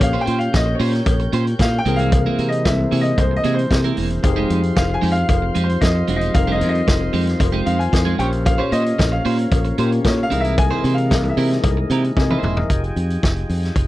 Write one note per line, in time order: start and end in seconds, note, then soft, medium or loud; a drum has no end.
0.00 0.15 A#1 loud
0.00 1.81 A#2 medium
0.00 1.82 A#3 medium
0.00 1.85 A#3 medium
0.00 1.85 C#4 medium
0.00 1.82 G4 medium
0.00 1.83 C#5 medium
0.00 0.20 F5 loud
0.00 1.82 G5 medium
0.00 muted clean electric guitar stroke soft
0.00 kick loud
0.00 closed hi-hat medium
0.00 cowbell medium
0.13 0.25 C#4 medium
0.13 0.26 G4 medium
0.13 0.26 C5 medium
0.21 0.38 G5 loud
0.26 0.47 A#2 loud
0.26 0.38 C#4 medium
0.26 0.38 G4 medium
0.26 0.38 C5 medium
0.26 closed hi-hat medium
0.39 0.56 F5 medium
0.39 muted clean electric guitar stroke soft
0.39 closed hi-hat soft
0.53 0.74 A#1 medium
0.53 0.73 D#5 medium
0.53 muted clean electric guitar stroke soft
0.53 kick loud
0.53 snare loud
0.53 closed hi-hat medium
0.53 cowbell medium
0.66 muted clean electric guitar stroke soft
0.75 1.23 C#5 medium
0.79 1.00 A#2 loud
0.79 0.94 C#4 medium
0.79 0.94 G4 loud
0.79 0.92 C5 loud
0.79 open hi-hat medium
0.93 muted clean electric guitar stroke soft
0.93 snare soft
0.93 closed hi-hat soft
1.06 1.26 A#1 medium
1.06 kick loud
1.06 closed hi-hat medium
1.06 cowbell medium
1.19 muted clean electric guitar stroke medium
1.19 closed hi-hat soft
1.33 1.53 A#2 loud
1.33 1.47 C#4 medium
1.33 1.45 G4 medium
1.33 1.45 C5 loud
1.33 closed hi-hat medium
1.46 muted clean electric guitar stroke soft
1.46 closed hi-hat soft
1.59 1.79 A#2 loud
1.59 1.79 F5 medium
1.59 muted clean electric guitar stroke soft
1.59 kick medium
1.59 snare loud
1.59 closed hi-hat medium
1.59 cowbell medium
1.72 muted clean electric guitar stroke soft
1.78 1.96 G5 loud
1.85 2.26 C2 loud
1.85 3.93 C3 medium
1.85 4.22 C3 medium
1.85 4.21 E3 medium
1.85 3.93 E3 medium
1.85 4.22 G#3 medium
1.85 1.99 A#3 medium
1.85 3.93 A#3 medium
1.85 4.22 A#3 medium
1.85 3.93 C4 medium
1.85 8.16 C4 medium
1.85 1.98 E4 medium
1.85 1.97 G#4 medium
1.85 3.94 G#4 medium
1.85 3.94 A#4 medium
1.85 closed hi-hat medium
1.96 2.11 A#3 medium
1.96 2.10 E4 medium
1.96 2.10 G#4 medium
1.96 2.50 F5 loud
1.96 closed hi-hat medium
2.12 kick loud
2.12 closed hi-hat medium
2.12 cowbell medium
2.26 2.37 A#3 medium
2.26 2.38 E4 medium
2.26 2.39 A#4 medium
2.38 2.67 C3 medium
2.38 2.50 A#3 medium
2.38 2.50 E4 medium
2.38 2.50 A#4 medium
2.38 closed hi-hat medium
2.49 2.66 D#5 loud
2.49 muted clean electric guitar stroke soft
2.49 closed hi-hat soft
2.65 2.85 C2 medium
2.65 3.02 E5 medium
2.65 muted clean electric guitar stroke soft
2.65 kick loud
2.65 snare loud
2.65 closed hi-hat medium
2.65 cowbell medium
2.78 muted clean electric guitar stroke soft
2.92 3.12 C3 loud
2.92 3.06 A#3 medium
2.92 3.04 E4 medium
2.92 3.03 G#4 medium
2.92 open hi-hat medium
3.01 3.19 D#5 loud
3.01 muted clean electric guitar stroke medium
3.01 closed hi-hat soft
3.18 3.38 C2 loud
3.18 3.37 C5 medium
3.18 kick loud
3.18 closed hi-hat medium
3.18 cowbell medium
3.31 muted clean electric guitar stroke soft
3.36 3.54 D#5 loud
3.44 3.64 C3 loud
3.44 3.58 A#3 medium
3.44 3.57 E4 medium
3.44 3.56 G#4 medium
3.44 closed hi-hat medium
3.54 4.29 C5 medium
3.54 muted clean electric guitar stroke soft
3.59 closed hi-hat soft
3.70 3.91 C3 loud
3.70 muted clean electric guitar stroke soft
3.70 kick medium
3.70 snare medium
3.70 closed hi-hat medium
3.70 cowbell medium
3.84 3.96 A#3 medium
3.84 3.96 E4 medium
3.84 3.97 A#4 medium
3.84 closed hi-hat soft
3.97 4.17 E1 medium
3.97 4.08 A#3 medium
3.97 4.08 E4 medium
3.97 4.08 A#4 medium
3.97 open hi-hat medium
4.10 muted clean electric guitar stroke soft
4.10 closed hi-hat medium
4.22 4.43 F1 medium
4.22 6.30 F3 medium
4.22 8.16 F3 medium
4.22 6.31 C4 medium
4.22 6.31 D#4 medium
4.22 10.27 F4 medium
4.22 6.31 G4 medium
4.22 6.32 G#4 medium
4.22 8.16 C5 medium
4.22 muted clean electric guitar stroke soft
4.22 kick loud
4.22 closed hi-hat medium
4.22 cowbell medium
4.36 4.48 G#3 medium
4.36 4.49 D#4 medium
4.36 4.49 G4 medium
4.49 4.70 F2 loud
4.49 4.61 G#3 medium
4.49 4.61 D#4 medium
4.49 4.61 G4 medium
4.49 closed hi-hat medium
4.62 muted clean electric guitar stroke soft
4.62 closed hi-hat soft
4.76 4.96 F1 medium
4.76 4.95 F5 medium
4.76 muted clean electric guitar stroke soft
4.76 kick loud
4.76 snare loud
4.76 closed hi-hat medium
4.76 cowbell medium
4.90 muted clean electric guitar stroke soft
4.94 5.12 G#5 loud
5.02 5.23 F2 loud
5.02 5.16 G#3 loud
5.02 5.16 D#4 medium
5.02 5.15 G4 loud
5.02 open hi-hat medium
5.12 5.66 F5 loud
5.16 muted clean electric guitar stroke soft
5.16 closed hi-hat soft
5.29 5.49 F1 loud
5.29 kick loud
5.29 closed hi-hat medium
5.29 cowbell medium
5.42 muted clean electric guitar stroke soft
5.55 5.76 F2 loud
5.55 5.69 G#3 medium
5.55 5.68 D#4 medium
5.55 5.67 G4 medium
5.55 closed hi-hat medium
5.64 5.80 C5 medium
5.68 muted clean electric guitar stroke soft
5.68 closed hi-hat soft
5.81 6.02 F2 loud
5.81 6.15 D#5 medium
5.81 muted clean electric guitar stroke soft
5.81 kick loud
5.81 snare loud
5.81 closed hi-hat medium
5.81 cowbell medium
5.95 muted clean electric guitar stroke medium
6.08 6.28 E1 medium
6.08 6.21 G#3 medium
6.08 6.21 D#4 medium
6.08 6.20 G4 loud
6.08 closed hi-hat medium
6.16 6.35 D#5 medium
6.21 6.33 G#3 medium
6.21 6.33 D#4 medium
6.21 6.33 G4 medium
6.21 closed hi-hat soft
6.33 6.62 F1 loud
6.33 8.15 F3 medium
6.33 8.17 G3 medium
6.33 8.16 C4 medium
6.33 8.16 D#4 medium
6.33 8.17 A#4 medium
6.33 6.53 F5 medium
6.33 muted clean electric guitar stroke soft
6.33 kick loud
6.33 closed hi-hat medium
6.33 cowbell medium
6.47 6.59 G#3 medium
6.47 6.60 D#4 medium
6.47 6.60 G#4 loud
6.52 6.67 D#5 medium
6.60 6.81 F2 medium
6.60 6.72 G#3 medium
6.60 6.72 D#4 medium
6.60 6.72 G#4 medium
6.60 closed hi-hat medium
6.69 7.45 D#5 loud
6.75 closed hi-hat soft
6.87 7.08 F1 loud
6.87 muted clean electric guitar stroke soft
6.87 kick loud
6.87 snare loud
6.87 closed hi-hat medium
6.87 cowbell medium
7.01 muted clean electric guitar stroke soft
7.13 7.34 F2 loud
7.13 7.28 G#3 medium
7.13 7.26 D#4 medium
7.13 7.25 G4 medium
7.13 open hi-hat medium
7.26 muted clean electric guitar stroke soft
7.26 snare soft
7.26 closed hi-hat medium
7.39 7.60 F1 loud
7.39 muted clean electric guitar stroke soft
7.39 kick loud
7.39 closed hi-hat medium
7.39 cowbell medium
7.52 7.64 G#3 medium
7.52 7.65 D#4 medium
7.52 7.66 G4 medium
7.65 7.87 F2 loud
7.65 7.77 G#3 medium
7.65 7.78 D#4 medium
7.65 7.78 G4 medium
7.65 7.80 F5 medium
7.65 closed hi-hat medium
7.79 8.20 G#5 medium
7.79 closed hi-hat soft
7.92 8.13 F2 loud
7.92 muted clean electric guitar stroke soft
7.92 kick loud
7.92 snare medium
7.92 closed hi-hat medium
7.92 cowbell medium
8.05 8.21 G#3 medium
8.05 8.18 D#4 medium
8.05 8.18 G#4 medium
8.18 8.59 A#1 loud
8.18 9.74 A#2 medium
8.18 9.75 A#3 medium
8.18 12.66 A#3 medium
8.18 8.30 C#4 medium
8.18 10.29 C#4 medium
8.18 9.75 C#4 medium
8.18 8.30 G4 medium
8.18 9.75 G4 medium
8.18 9.76 C5 medium
8.18 8.31 C#5 medium
8.18 8.25 G5 medium
8.18 closed hi-hat medium
8.32 muted clean electric guitar stroke medium
8.32 closed hi-hat medium
8.46 8.60 F5 medium
8.46 muted clean electric guitar stroke soft
8.46 kick loud
8.46 closed hi-hat medium
8.46 cowbell medium
8.58 8.70 C#4 medium
8.58 8.71 G4 medium
8.58 8.72 C5 medium
8.58 8.71 C#5 medium
8.71 8.92 A#2 loud
8.71 8.83 C#4 medium
8.71 8.83 G4 medium
8.71 8.83 C5 medium
8.71 9.13 D#5 loud
8.71 closed hi-hat medium
8.85 muted clean electric guitar stroke soft
8.85 closed hi-hat soft
8.98 9.19 A#1 medium
8.98 muted clean electric guitar stroke medium
8.98 kick loud
8.98 snare loud
8.98 closed hi-hat medium
8.98 cowbell medium
9.12 9.61 F5 medium
9.12 muted clean electric guitar stroke soft
9.25 9.45 A#2 loud
9.25 9.39 C#4 medium
9.25 9.38 G4 loud
9.25 9.37 C5 medium
9.25 open hi-hat medium
9.38 muted clean electric guitar stroke soft
9.38 closed hi-hat medium
9.52 9.72 A#1 loud
9.52 kick loud
9.52 closed hi-hat medium
9.52 cowbell medium
9.65 muted clean electric guitar stroke medium
9.65 closed hi-hat soft
9.78 10.31 A#2 medium
9.78 9.98 A#2 loud
9.78 10.31 A#3 medium
9.78 9.92 C#4 medium
9.78 10.31 C#4 medium
9.78 9.91 G4 medium
9.78 10.32 G4 medium
9.78 10.32 A#4 medium
9.78 9.90 C5 medium
9.78 closed hi-hat medium
9.92 muted clean electric guitar stroke soft
9.92 closed hi-hat soft
10.05 10.25 A#2 loud
10.05 10.23 C#5 medium
10.05 muted clean electric guitar stroke soft
10.05 kick medium
10.05 snare loud
10.05 closed hi-hat medium
10.05 cowbell medium
10.18 muted clean electric guitar stroke soft
10.23 10.41 F5 loud
10.30 10.71 C2 loud
10.30 12.39 C3 medium
10.30 12.68 C3 medium
10.30 12.39 E3 medium
10.30 12.68 E3 medium
10.30 12.68 G#3 medium
10.30 10.44 C4 medium
10.30 12.39 C4 medium
10.30 12.39 D#4 medium
10.30 12.68 D#4 medium
10.30 10.44 E4 medium
10.30 12.40 G#4 medium
10.30 10.43 A#4 medium
10.30 12.14 A#4 medium
10.30 closed hi-hat medium
10.41 10.55 A#4 medium
10.41 10.57 E5 loud
10.41 closed hi-hat medium
10.45 10.56 C4 medium
10.45 10.56 E4 medium
10.58 10.95 G#5 loud
10.58 kick loud
10.58 closed hi-hat medium
10.58 cowbell medium
10.71 10.83 C4 medium
10.71 10.83 E4 medium
10.71 10.84 C5 medium
10.84 11.13 C3 loud
10.84 10.95 C4 medium
10.84 10.95 E4 medium
10.84 10.96 C5 medium
10.84 closed hi-hat medium
10.94 11.30 F5 medium
10.94 closed hi-hat soft
11.10 11.31 C2 loud
11.10 muted clean electric guitar stroke soft
11.10 kick loud
11.10 snare loud
11.10 closed hi-hat medium
11.10 cowbell medium
11.24 muted clean electric guitar stroke soft
11.24 closed hi-hat soft
11.29 11.54 E5 medium
11.37 11.57 C3 loud
11.37 11.51 C4 medium
11.37 11.50 E4 loud
11.37 11.49 A#4 medium
11.37 open hi-hat medium
11.51 muted clean electric guitar stroke soft
11.51 snare soft
11.51 closed hi-hat soft
11.64 11.84 C2 loud
11.64 kick loud
11.64 closed hi-hat medium
11.64 cowbell medium
11.77 muted clean electric guitar stroke soft
11.90 12.10 C3 loud
11.90 12.05 C4 medium
11.90 12.04 E4 medium
11.90 12.03 A#4 medium
11.90 closed hi-hat medium
12.04 muted clean electric guitar stroke medium
12.04 closed hi-hat soft
12.17 12.37 C3 loud
12.17 12.30 D#5 medium
12.17 12.29 G#5 medium
12.17 muted clean electric guitar stroke soft
12.17 kick medium
12.17 snare medium
12.17 cowbell medium
12.30 12.42 C4 medium
12.30 12.43 E4 medium
12.30 12.56 A#4 medium
12.30 12.44 C5 medium
12.30 12.55 E5 medium
12.30 high tom medium
12.43 12.63 E1 loud
12.43 12.54 C4 medium
12.43 12.55 E4 medium
12.43 12.55 C5 medium
12.43 mid tom medium
12.57 12.82 A#4 medium
12.57 12.82 D#5 medium
12.57 muted clean electric guitar stroke soft
12.57 floor tom loud
12.70 12.90 F1 medium
12.70 13.87 F3 medium
12.70 13.87 D#4 medium
12.70 13.87 G4 medium
12.70 13.87 G#4 medium
12.70 kick loud
12.70 closed hi-hat medium
12.84 closed hi-hat soft
12.96 13.16 F2 medium
12.96 closed hi-hat medium
13.10 closed hi-hat soft
13.23 13.43 F1 medium
13.23 kick loud
13.23 snare loud
13.36 closed hi-hat soft
13.50 13.70 F2 medium
13.50 open hi-hat medium
13.63 snare soft
13.63 closed hi-hat soft
13.76 13.87 F1 medium
13.76 kick loud
13.76 closed hi-hat medium